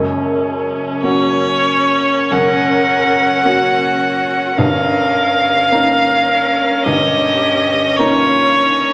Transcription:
Already playing: grand piano F#1 F#2, viola C#4
1.02 grand piano A#3 C#4 F#4, violin C#5
2.30 grand piano F#1 F#2, cello A#4, violin F#5
3.45 grand piano A#3 C#4 F#4, cello F#4
4.57 grand piano G1 G2, viola C#4, cello A#4, violin F5
5.71 grand piano A#3 C#4 D#4, cello A#4
6.84 grand piano G1 G2, cello G4, violin D#5
7.97 grand piano A#3 C#4 D#4, cello F4, violin C#5
8.58 cello D#4

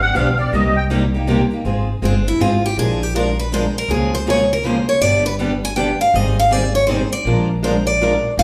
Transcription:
0.01 steel-string acoustic guitar B3 D4 G4, accordion F#5
0.15 upright bass B1, steel-string acoustic guitar D3 F3 B3 D4 G4, accordion F5
0.38 steel-string acoustic guitar B3 D4 G4, accordion D5
0.52 upright bass C2, steel-string acoustic guitar C3 G3 A#3 D#4 G4, accordion D#5
0.76 accordion G5
0.90 steel-string acoustic guitar C3 G3 A#3 D#4 G4
1.14 steel-string acoustic guitar A#3 D#4 G4
1.27 steel-string acoustic guitar C3 G3 A#3 D#4 G4
1.51 steel-string acoustic guitar A#3 D#4 G4
1.64 upright bass G#1, steel-string acoustic guitar G#3 C4 F4 G#4
2.02 upright bass G1, steel-string acoustic guitar G#3 C4 D4 F4 G#4
2.28 steel-string acoustic guitar E4
2.39 upright bass G#1, steel-string acoustic guitar G#3 C4 F4 G#4
2.66 steel-string acoustic guitar G4
2.77 upright bass A#1, steel-string acoustic guitar F3 G#3 D4 F4 G#4 A#4
3.03 steel-string acoustic guitar G4
3.15 steel-string acoustic guitar F3 G#3 D4 F4 A#4
3.39 steel-string acoustic guitar B4
3.52 steel-string acoustic guitar F3 G#3 D4 F4 A#4 C5
3.78 steel-string acoustic guitar A#4
3.88 upright bass C#2, steel-string acoustic guitar C#3 F3 G#3 A#3 C#4 F4 G#4 A#4
4.15 steel-string acoustic guitar C5
4.27 steel-string acoustic guitar C#3 F3 G#3 A#3 C#4 F4 G#4 A#4 C#5
4.53 steel-string acoustic guitar A#4
4.63 steel-string acoustic guitar C#3 F3 G#3 A#3 C#4 F4 G#4 A#4 C5
4.89 steel-string acoustic guitar C#5
5.01 upright bass G1, steel-string acoustic guitar D3 G3 B3 D4 G4 D5
5.26 steel-string acoustic guitar B4
5.39 steel-string acoustic guitar D3 G3 B3 D4 G4
5.65 steel-string acoustic guitar G#5
5.76 steel-string acoustic guitar D3 G3 B3 D4 G4 G5
6.01 steel-string acoustic guitar F5
6.13 upright bass G#1, steel-string acoustic guitar D#3 G3 C4 D#4 G#4 D#5
6.39 steel-string acoustic guitar F5
6.50 steel-string acoustic guitar D#3 G3 C4 D#4 G#4 D5
6.75 steel-string acoustic guitar C#5
6.87 steel-string acoustic guitar D#3 G3 C4 D#4 G#4 C5
7.13 steel-string acoustic guitar D5
7.25 upright bass A#1, steel-string acoustic guitar F3 G#3 D4 F4 A#4
7.64 steel-string acoustic guitar F3 G#3 D4 F4 A#4 C5
7.87 steel-string acoustic guitar D5
8.01 steel-string acoustic guitar F3 G#3 D4 F4 A#4
8.37 upright bass G#1, steel-string acoustic guitar G#3 D#4 F4 C5 F5

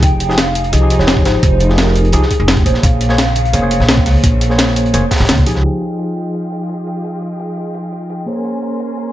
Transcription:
Already playing: tine electric piano F3 D#4 G4 G#4
0.03 upright bass F1, string section D#4, soft synth lead G5, kick, closed hi-hat
0.20 closed hi-hat
0.28 tine electric piano F3 D#4 G4 G#4, snare
0.37 soft synth lead F5, snare, closed hi-hat
0.55 closed hi-hat
0.64 closed hi-hat
0.72 upright bass C2, tine electric piano F3 D#4 G4 G#4, soft synth lead D#5, closed hi-hat
0.80 tine electric piano F3 D#4 G4 G#4
0.90 closed hi-hat
0.99 upright bass F1, soft synth lead C#5, snare
1.07 snare, closed hi-hat
1.17 kick
1.25 upright bass G#1, soft synth lead C5, snare, closed hi-hat
1.43 upright bass F1, kick, closed hi-hat
1.60 closed hi-hat
1.68 tine electric piano F3 D#4 G4 G#4, snare
1.78 soft synth lead A#4, snare, closed hi-hat
1.87 snare
1.96 closed hi-hat
2.05 closed hi-hat
2.12 upright bass C2, tine electric piano F3 D#4 G4 G#4, soft synth lead G#4, closed hi-hat
2.22 snare
2.31 kick, closed hi-hat
2.40 upright bass F1
2.48 tine electric piano F3 D#4 G4 G#4, snare, closed hi-hat
2.57 kick, closed hi-hat
2.65 upright bass A#1, string section C#3, tine electric piano A#3 G#4 C5 C#5, soft synth lead C5, closed hi-hat
2.74 snare
2.83 upright bass A#1, soft synth lead F5, kick, closed hi-hat
3.01 closed hi-hat
3.09 tine electric piano A#3 G#4 C5 C#5, snare
3.18 snare, closed hi-hat
3.35 closed hi-hat
3.45 closed hi-hat
3.53 upright bass F1, tine electric piano A#3 G#4 C5 C#5, closed hi-hat
3.61 tine electric piano A#3 G#4 C5 C#5
3.71 closed hi-hat
3.80 upright bass A#1, snare
3.89 snare, closed hi-hat
3.97 kick
4.06 upright bass C#2, snare, closed hi-hat, open hi-hat
4.24 upright bass A#1, kick, closed hi-hat
4.41 closed hi-hat
4.49 tine electric piano A#3 G#4 C5 C#5, snare
4.58 snare, closed hi-hat
4.68 snare
4.76 closed hi-hat
4.86 closed hi-hat
4.93 upright bass F1, tine electric piano A#3 G#4 C5 C#5, closed hi-hat
5.11 kick, snare, closed hi-hat
5.16 snare, closed hi-hat
5.20 upright bass A#1, snare, closed hi-hat
5.25 tine electric piano A#3, snare, closed hi-hat
5.29 upright bass C#2, tine electric piano G#4 C5 C#5, snare, closed hi-hat
5.38 kick
5.46 upright bass A#1, tine electric piano F3 D#4 G4 G#4, closed hi-hat
5.48 closed hi-hat
5.55 upright bass C#2, snare
5.63 tine electric piano F3 D#4 G#4 G5, string section F4 G#4 D#5 G5, closed hi-hat
5.82 closed hi-hat
5.99 closed hi-hat
6.17 closed hi-hat
6.34 closed hi-hat
6.52 closed hi-hat
6.69 closed hi-hat
6.87 closed hi-hat
7.04 closed hi-hat
7.22 closed hi-hat
7.40 closed hi-hat
7.57 closed hi-hat
7.75 closed hi-hat
7.92 closed hi-hat
8.10 closed hi-hat
8.26 tine electric piano A#3 G#4 C5 C#5, string section C#4 A#4 G#5 C6, closed hi-hat
8.45 closed hi-hat
8.62 closed hi-hat
8.80 closed hi-hat
8.97 closed hi-hat

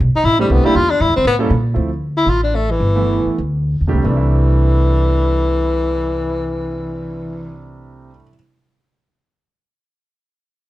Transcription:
0.00 upright bass B1
0.15 tenor saxophone D#4, muted upright bass stroke
0.24 upright bass A1, tenor saxophone E4
0.39 tenor saxophone G3, grand piano A3 C4 D4 E4 G4
0.50 upright bass C2, tenor saxophone B3
0.64 grand piano G3 A#3 D4 E4 G4, tenor saxophone E4, muted upright bass stroke
0.75 upright bass E2, tenor saxophone F4
0.91 tenor saxophone D4
1.00 upright bass G2, tenor saxophone E4
1.09 upright bass E2
1.16 upright bass D2, tenor saxophone C4
1.25 upright bass A2, tenor saxophone B3
1.39 grand piano G3 A#3 C#4 E4 A4
1.50 upright bass A#2
1.74 upright bass D2, grand piano F3 A3 C4 E4
2.17 tenor saxophone E4
2.26 upright bass A1, tenor saxophone F4
2.43 tenor saxophone D4
2.55 tenor saxophone A3
2.71 tenor saxophone E3
2.80 upright bass G1
2.96 grand piano E3 A3 B3 E4
3.25 muted upright bass stroke
3.38 upright bass D2
3.81 upright bass E2
3.88 grand piano C3 G3 A3 D4 G4
3.93 upright bass C#2
3.98 grand piano G3
4.04 upright bass C2, tenor saxophone E3, grand piano A3
4.10 grand piano D4
4.17 grand piano E4

